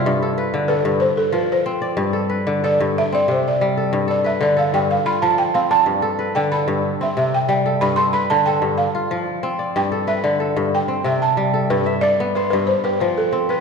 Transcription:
<<
  \new Staff \with { instrumentName = "Balafon" } { \time 12/8 \key g \mixolydian \tempo 4. = 123 r2 b'4 c''8 a'8 b'8 c''4 r8 | r2 d''4 e''8 d''8 c''8 d''4 r8 | r8 d''8 e''8 d''8 f''8 g''8 f''8 b''8 a''8 g''8 f''8 a''8~ | a''4. g''8 b''8 r4 e''8 e''8 g''8 g''4 |
b''8 c'''8 b''8 a''8 g''4 f''2~ f''8 r8 | g''4 e''8 d''8 r4 g''4 e''8 a''4. | b'4 d''4 b'8 b'8 c''8 b'8 c''8 a'4 b'8 | }
  \new Staff \with { instrumentName = "Kora" } { \time 12/8 \key g \mixolydian f'16 r16 a'8 b'4 a'4. r2 d''8~ | d''8 a'8 b'4 a'4. c'4. r8 a'8~ | a'8 a'8 b'4 a'4. f'4. r8 d''8~ | d''8 a'8 b'4 a'4. c'4. r8 a'8~ |
a'8 a'8 b'4 a'4. f'4. r8 d''8~ | d''8 a'8 b'4 a'4. c'4. r8 a'8~ | a'8 e''8 d''4 c''4. g'4. r8 b'8 | }
  \new Staff \with { instrumentName = "Kora" } { \clef bass \time 12/8 \key g \mixolydian g,4 r8 d4 g,8 r4 f4 c'4 | g,4 r8 d4 g,8 r4 c4 g4 | g,4 r8 d4 g,8 r4 f4 c'4 | g,4 r8 d4 g,8 r4 c4 g4 |
g,4 r8 d4 g,8 r4 f4 c'4 | g,4 r8 d4 g,8 r4 c4 g4 | g,4 r8 b4 g,8 r4 f4 c'4 | }
>>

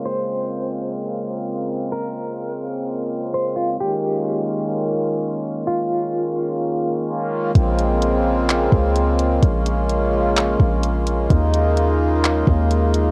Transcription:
<<
  \new Staff \with { instrumentName = "Clean electric guitar" } { \time 4/4 \key bes \dorian \tempo 4 = 128 c''1 | bes'2. c''8 f'8 | g'1 | f'1 |
r1 | r1 | r1 | }
  \new Staff \with { instrumentName = "Harmonium" } { \time 4/4 \key bes \dorian << { f'1~ | f'1~ | f'1~ | f'1 |
f'1~ | f'1~ | f'1 | } \\ { c'1~ | c'1 | des'1~ | des'1 |
c'1 | des'1 | ees'1 | } >> }
  \new Staff \with { instrumentName = "Harmonium" } { \clef bass \time 4/4 \key bes \dorian << { <aes bes>1~ | <aes bes>1 | <aes bes>1~ | <aes bes>1 |
<aes bes>1~ | <aes bes>1~ | <aes bes>1 | } \\ { des1~ | des1 | ees1~ | ees1 |
des1~ | des1 | des1 | } >> }
  \new Staff \with { instrumentName = "808-style bass" } { \clef bass \time 4/4 \key bes \dorian r1 | r1 | r1 | r1 |
bes,,2~ bes,,8 des,4. | bes,,2~ bes,,8 bes,,4. | ees,2~ ees,8 ees,4. | }
  \new DrumStaff \with { instrumentName = "Drums" } \drummode { \time 4/4 r4 r4 r4 r4 | r4 r4 r4 r4 | r4 r4 r4 r4 | r4 r4 r4 r4 |
<hh bd>8 hh8 hh4 <hc hh>8 bd8 hh8 hh8 | <hh bd>8 hh8 hh4 <hc hh>8 bd8 hh8 hh8 | <hh bd>8 hh8 hh4 <hc hh>8 bd8 hh8 hh8 | }
>>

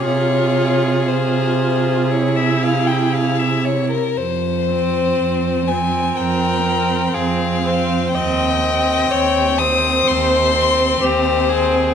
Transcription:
<<
  \new Staff \with { instrumentName = "Violin" } { \time 4/4 \key f \minor \tempo 4 = 61 des''4 c''4 des''16 e''16 f''16 g''16 f''16 e''16 des''16 bes'16 | c''4. aes''8 g''4 f''4 | g''4. ees'''8 c'''4 c''4 | }
  \new Staff \with { instrumentName = "Violin" } { \time 4/4 \key f \minor aes'2.~ aes'8 r8 | r2 bes'4 aes'8 c''8 | ees''4 des''8 c''4. g'8 aes'8 | }
  \new Staff \with { instrumentName = "Viola" } { \time 4/4 \key f \minor f'4 f'4 e'2 | r8 c'4 c'4 c'4 c'8 | c'8 c'4 c'4 c'4 c'8 | }
  \new Staff \with { instrumentName = "Cello" } { \clef bass \time 4/4 \key f \minor c1 | f,4 f,4 f,4 f,4 | ees,4 ees,4 ees,4 ees,4 | }
>>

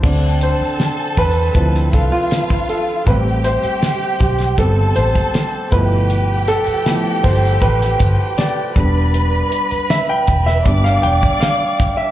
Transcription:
<<
  \new Staff \with { instrumentName = "Vibraphone" } { \time 4/4 \key d \dorian \tempo 4 = 79 d''16 g''2.~ g''8. | r8 e''2.~ e''8 | r1 | r1 | }
  \new Staff \with { instrumentName = "String section" } { \time 4/4 \key d \dorian <a' a''>2~ <a' a''>8 <f' f''>4. | <g' g''>2 <a' a''>4. <g' g''>8~ | <g' g''>2.~ <g' g''>8 <b' b''>8~ | <b' b''>2 <d'' d'''>2 | }
  \new Staff \with { instrumentName = "Grand piano" } { \time 4/4 \key d \dorian r8 c''4 b'4 a'16 f'8. a'8 | b'8 c''4 g'8 a'8 c''4 b'8~ | b'8 a'4 c''8 b'4 d''4 | r4 e''16 g''8 e''8 f''16 g''8 f''8. e''16 | }
  \new Staff \with { instrumentName = "Grand piano" } { \time 4/4 \key d \dorian <d c' d'>2 <f c' e'>8 r4. | <g a c'>2 <g b c'>8 r4 <b, f a e'>8~ | <b, f a e'>4 <f a b e'>8 r2 <g b d'>8~ | <g b d'>2 <g b d'>8 r4. | }
  \new Staff \with { instrumentName = "Fingered electric bass" } { \clef bass \time 4/4 \key d \dorian d,8. r8. e,8 d,8 c,16 r4 r16 | a,,8. r8. b,,8 g,,8 a,,16 r8. g,,8~ | g,,8. r8. g,,8 a,,8 g,,16 r8. e,,8~ | e,,8 r4 e,,8 g,,8 e,,16 r4 r16 | }
  \new DrumStaff \with { instrumentName = "Drums" } \drummode { \time 4/4 <cymc bd>8 hh8 <hh sn>8 <hho bd>8 <hh bd>16 sn16 <hh bd>8 <hh sn>16 bd16 hh8 | <hh bd>8 hh16 hh16 <hh sn>8 <hh bd>16 <hh sn>16 <hh bd>8 hh16 bd16 <hh sn>8 <hh bd>8 | hh8 hh16 hh16 <hh sn>8 <hho bd>8 <hh bd>16 sn16 <hh bd>8 <hh sn>8 <hh bd>8 | hh8 hh16 hh16 <hh sn>8 <hh bd>16 sn16 <hh bd>16 sn16 hh16 bd16 <hh sn>8 <hh bd>8 | }
>>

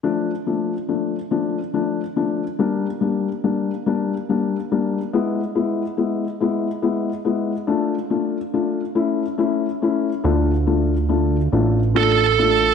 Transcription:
<<
  \new Staff \with { instrumentName = "Lead electric guitar" } { \time 6/8 \key d \minor \tempo 4. = 47 r2. | r2. | r2. | r2. |
r2 a'4 | }
  \new Staff \with { instrumentName = "Felt piano" } { \time 6/8 \key d \minor <f a d'>8 <f a d'>8 <f a d'>8 <f a d'>8 <f a d'>8 <f a d'>8 | <g bes d'>8 <g bes d'>8 <g bes d'>8 <g bes d'>8 <g bes d'>8 <g bes d'>8 | <gis b e'>8 <gis b e'>8 <gis b e'>8 <gis b e'>8 <gis b e'>8 <gis b e'>8 | <a d' f'>8 <a d' f'>8 <a d' f'>8 <a cis' e'>8 <a cis' e'>8 <a cis' e'>8 |
<a d' f'>8 <a d' f'>8 <a d' f'>8 <a d' f'>8 <a d' f'>8 <a d' f'>8 | }
  \new Staff \with { instrumentName = "Analog synth bass" } { \clef bass \time 6/8 \key d \minor r2. | r2. | r2. | r2. |
d,4. a,,4. | }
>>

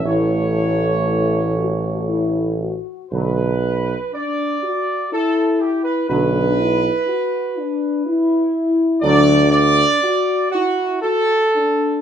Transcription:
<<
  \new Staff \with { instrumentName = "Trumpet section" } { \time 3/4 \key b \minor \tempo 4 = 60 cis''2~ cis''8 r8 | b'4 d''4 a'8 g'16 b'16 | b'2~ b'8 r8 | d''8 d''4 fis'8 a'4 | }
  \new Staff \with { instrumentName = "French horn section" } { \time 3/4 \key b \minor e'4 e'8 fis'8 e'8 fis'8 | r4 d'8 fis'8 e'4 | d'8 e'8 fis'8 d'8 e'4 | d'4 fis'8 e'8 fis'8 d'8 | }
  \new Staff \with { instrumentName = "Trombone section" } { \clef bass \time 3/4 \key b \minor <e a>2~ <e a>8 r8 | <d fis>8 r2 r8 | <d fis>8 r2 r8 | <d fis>8 r2 r8 | }
  \new Staff \with { instrumentName = "Tuba" } { \clef bass \time 3/4 \key b \minor a,,2~ a,,8 r8 | b,,4 r2 | b,,4 r2 | d,4 r2 | }
>>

